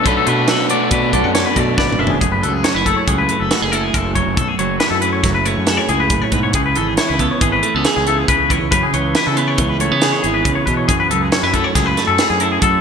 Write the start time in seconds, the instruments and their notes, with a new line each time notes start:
Already playing: clean electric guitar F#3 A3
0.04 fingered electric bass B1, overdriven electric guitar B2 F#3 B3 D4, clean electric guitar B2 A4 B4, kick, closed hi-hat
0.17 clean electric guitar A4
0.26 fingered electric bass B2, clean electric guitar D4 B4, closed hi-hat
0.48 clean electric guitar F#3 F#4 A4, snare, closed hi-hat
0.69 overdriven electric guitar B2 F#3 B3 D4, clean electric guitar A3 D5, closed hi-hat
0.91 fingered electric bass B2, clean electric guitar D4 B4, kick, closed hi-hat
1.13 fingered electric bass B1, clean electric guitar F#2 A4 D5, kick, closed hi-hat
1.23 fingered electric bass F#2, clean electric guitar F#5
1.34 clean electric guitar D4 C#5, snare, closed hi-hat
1.45 clean electric guitar B4
1.56 fingered electric bass B2, clean electric guitar A3 D5, kick, closed hi-hat
1.77 fingered electric bass G#1, clean electric guitar B2 B4 D5, kick, snare
1.92 mid tom
1.99 fingered electric bass F#1, clean electric guitar D4 E5
2.07 clean electric guitar G#4, floor tom
2.20 fingered electric bass F#1, clean electric guitar F#2 G#4, kick, closed hi-hat
2.32 clean electric guitar B4
2.43 fingered electric bass C#2, clean electric guitar F#3 A4, closed hi-hat
2.53 clean electric guitar G#4
2.64 clean electric guitar C#4 C#5, snare, closed hi-hat
2.75 fingered electric bass F#1, clean electric guitar E4 B4
2.86 clean electric guitar A3 A4, kick, closed hi-hat
2.96 clean electric guitar C#5
3.07 fingered electric bass C#2, clean electric guitar F#3 G#4, kick, closed hi-hat
3.18 clean electric guitar B4
3.29 clean electric guitar A3, closed hi-hat
3.40 fingered electric bass F#1, clean electric guitar A4
3.51 clean electric guitar F#4, snare, closed hi-hat
3.61 fingered electric bass F#1, clean electric guitar G#4
3.72 clean electric guitar E4 A4, closed hi-hat
3.83 clean electric guitar G#4
3.93 fingered electric bass F#1, clean electric guitar F#2 A4, kick, closed hi-hat
4.15 clean electric guitar F#3 C#5, kick, closed hi-hat
4.26 fingered electric bass F#1
4.37 fingered electric bass B1, clean electric guitar F#2 A4, kick, closed hi-hat
4.48 clean electric guitar G#4
4.58 fingered electric bass F#1, clean electric guitar F#3 C#5, closed hi-hat
4.80 clean electric guitar E4 B4, snare, closed hi-hat
4.90 fingered electric bass F#2, clean electric guitar A4
5.01 clean electric guitar A3 B4, closed hi-hat
5.13 clean electric guitar C#5
5.23 fingered electric bass F#1, clean electric guitar F#3, kick, snare, closed hi-hat
5.35 clean electric guitar B4
5.45 clean electric guitar A3 C#5, closed hi-hat
5.57 fingered electric bass F#2
5.67 clean electric guitar G#4 A4, snare, closed hi-hat
5.77 clean electric guitar C#5
5.89 fingered electric bass C#2, clean electric guitar E4 G#4, closed hi-hat
6.00 clean electric guitar B4
6.10 fingered electric bass F#1, clean electric guitar A2, kick, closed hi-hat
6.22 clean electric guitar C#5
6.32 fingered electric bass G#2, clean electric guitar B2 B4, kick, closed hi-hat
6.43 clean electric guitar C#5
6.53 fingered electric bass C#2, clean electric guitar C#3 G#4, kick, closed hi-hat
6.66 clean electric guitar B4
6.75 fingered electric bass G#1, clean electric guitar E3 A4, closed hi-hat
6.87 clean electric guitar G#4
6.97 clean electric guitar E4 C#5, snare, closed hi-hat
7.09 fingered electric bass C#2, clean electric guitar B4
7.19 clean electric guitar B3 A4, kick, closed hi-hat
7.31 clean electric guitar C#5
7.41 fingered electric bass G#1, clean electric guitar E3 G#4, kick, closed hi-hat
7.52 clean electric guitar B4
7.63 clean electric guitar A3, closed hi-hat
7.74 fingered electric bass C#2, clean electric guitar B3 A4
7.85 clean electric guitar G#4, snare, closed hi-hat
7.96 fingered electric bass C#2, clean electric guitar G#4
8.07 clean electric guitar E4 A4, closed hi-hat
8.18 clean electric guitar G#4
8.28 fingered electric bass C#2, clean electric guitar C#3 B4, kick, closed hi-hat
8.50 clean electric guitar E3 C#5, kick, closed hi-hat
8.62 fingered electric bass C#2
8.71 fingered electric bass F#2, clean electric guitar C#3 B4, kick, closed hi-hat
8.83 clean electric guitar G#4
8.94 fingered electric bass C#2, clean electric guitar E3 C#5, closed hi-hat
9.15 clean electric guitar E4 B4, snare, closed hi-hat
9.27 fingered electric bass C#3, clean electric guitar A4
9.37 clean electric guitar B3 B4, closed hi-hat
9.48 clean electric guitar C#5
9.57 fingered electric bass C#2, clean electric guitar E3, kick, closed hi-hat
9.69 clean electric guitar B4
9.80 clean electric guitar A3 C#5, closed hi-hat
9.92 fingered electric bass C#3, clean electric guitar B3
10.02 clean electric guitar G#4, snare, closed hi-hat
10.12 clean electric guitar C#5
10.23 fingered electric bass G#1, clean electric guitar E4 G#4, closed hi-hat
10.34 clean electric guitar B4
10.44 fingered electric bass C#2, clean electric guitar C#3, kick, closed hi-hat
10.55 clean electric guitar C#5
10.66 fingered electric bass B2, clean electric guitar E3 B4, kick, closed hi-hat
10.77 clean electric guitar C#5
10.88 clean electric guitar F#2 G#4, fingered electric bass F#2, kick, closed hi-hat
11.00 clean electric guitar B4
11.10 fingered electric bass C#2, clean electric guitar F#3 A4, closed hi-hat
11.21 clean electric guitar G#4
11.32 clean electric guitar C#4 C#5, snare, closed hi-hat
11.43 fingered electric bass F#2, clean electric guitar E4 B4
11.54 clean electric guitar A3 A4, kick, closed hi-hat
11.64 clean electric guitar C#5
11.75 fingered electric bass C#2, clean electric guitar F#3 G#4, kick, snare, closed hi-hat
11.86 clean electric guitar B4
11.97 clean electric guitar A3, snare, closed hi-hat
12.07 fingered electric bass F#2, clean electric guitar A4
12.18 clean electric guitar G#4, snare, closed hi-hat
12.30 fingered electric bass F#2, clean electric guitar G#4
12.40 clean electric guitar E4 A4, closed hi-hat
12.52 clean electric guitar G#4
12.61 clean electric guitar F#2 A4, fingered electric bass F#2, kick, closed hi-hat